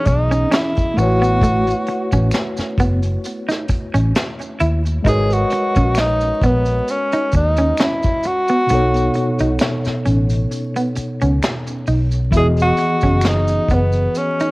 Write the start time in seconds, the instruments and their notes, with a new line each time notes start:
Already playing: tine electric piano E3 B3 F#4 G#4 D#5
0.05 fingered electric bass B1, tenor saxophone D#4, muted clean electric guitar stroke, kick, closed hi-hat, maracas
0.31 clean electric guitar C#4, closed hi-hat, maracas
0.51 clean electric guitar C#4, tenor saxophone E4, finger snap, snare, closed hi-hat, maracas
0.76 kick, closed hi-hat, maracas
0.94 fingered electric bass A1, tine electric piano A3 E4, open hi-hat
0.98 tenor saxophone F#4, tine electric piano F#4 B4 C#5, muted clean electric guitar stroke, maracas
1.22 clean electric guitar B3, closed hi-hat, maracas
1.41 clean electric guitar A3, kick, closed hi-hat, maracas
1.67 closed hi-hat, maracas
1.86 muted clean electric guitar stroke, closed hi-hat
2.12 fingered electric bass A1, clean electric guitar C#4, kick, closed hi-hat, maracas
2.31 finger snap, snare, closed hi-hat, maracas
2.57 muted fingered electric bass stroke, snare, closed hi-hat, maracas
2.78 fingered electric bass F#1, clean electric guitar B3, kick, closed hi-hat, maracas
3.02 closed hi-hat, maracas
3.24 closed hi-hat, maracas
3.48 clean electric guitar D#4, snare, closed hi-hat, maracas
3.68 muted clean electric guitar stroke, muted fingered electric bass stroke, kick, closed hi-hat, maracas
3.94 fingered electric bass A1, clean electric guitar C#4, closed hi-hat, maracas
4.15 finger snap, snare, closed hi-hat, maracas
4.39 closed hi-hat, maracas
4.59 fingered electric bass D#2, clean electric guitar E4, closed hi-hat, maracas
4.85 closed hi-hat, maracas
5.02 fingered electric bass G#1, tine electric piano G#3 F#4 D#5, clean electric guitar D#4, kick, closed hi-hat
5.07 tenor saxophone G#4, tine electric piano A#4 B4 C#5, maracas
5.30 tenor saxophone F#4, closed hi-hat, maracas
5.50 muted clean electric guitar stroke, closed hi-hat
5.75 fingered electric bass A#1, clean electric guitar C#4, kick, closed hi-hat, maracas
5.95 finger snap, snare, closed hi-hat, maracas
6.00 tenor saxophone D#4
6.21 closed hi-hat, maracas
6.41 fingered electric bass A#1, clean electric guitar B3, kick, closed hi-hat, maracas
6.46 tenor saxophone B3
6.65 closed hi-hat, maracas
6.87 tenor saxophone C#4, closed hi-hat, maracas
7.12 clean electric guitar D#4, closed hi-hat, maracas
7.31 fingered electric bass D#2, muted clean electric guitar stroke, kick, closed hi-hat, maracas
7.36 tenor saxophone D#4
7.57 clean electric guitar C#4, closed hi-hat, maracas
7.77 clean electric guitar C#4, finger snap, snare, closed hi-hat, maracas
7.82 tenor saxophone E4
8.02 kick, closed hi-hat, maracas
8.23 muted clean electric guitar stroke, closed hi-hat, maracas
8.27 tenor saxophone F#4
8.48 clean electric guitar B3, closed hi-hat, maracas
8.67 tine electric piano B2 B3 D#4, clean electric guitar B3, closed hi-hat, maracas
8.71 fingered electric bass B1, tine electric piano A4 C#5
8.94 closed hi-hat, maracas
9.14 muted clean electric guitar stroke, closed hi-hat
9.39 fingered electric bass B1, clean electric guitar D#4, closed hi-hat, maracas
9.59 finger snap, snare, closed hi-hat, maracas
9.85 muted fingered electric bass stroke, snare, closed hi-hat, maracas
10.05 fingered electric bass A1, clean electric guitar C#4, closed hi-hat, maracas
10.30 closed hi-hat, maracas
10.51 closed hi-hat, maracas
10.76 clean electric guitar B3, closed hi-hat, maracas
10.95 muted clean electric guitar stroke, muted fingered electric bass stroke, closed hi-hat, maracas
11.21 fingered electric bass C#2, clean electric guitar C#4, closed hi-hat, maracas
11.43 finger snap, snare, closed hi-hat, maracas
11.67 closed hi-hat, maracas
11.87 fingered electric bass B1, clean electric guitar D#4, open hi-hat, maracas
12.11 closed hi-hat, maracas
12.31 fingered electric bass E1, tine electric piano E3 B3, clean electric guitar E4, kick, closed hi-hat, maracas
12.35 tine electric piano F#4 G#4 D#5, tenor saxophone G#4
12.57 closed hi-hat, maracas
12.62 tenor saxophone F#4
12.77 muted clean electric guitar stroke, closed hi-hat
13.01 fingered electric bass F#1, clean electric guitar C#4, kick, closed hi-hat, maracas
13.21 finger snap, snare, closed hi-hat, maracas
13.28 tenor saxophone D#4
13.48 closed hi-hat, maracas
13.69 fingered electric bass F#1, clean electric guitar B3, kick, closed hi-hat, maracas
13.74 tenor saxophone B3
13.92 closed hi-hat, maracas
14.15 tenor saxophone C#4, closed hi-hat, maracas
14.39 clean electric guitar D#4, closed hi-hat, maracas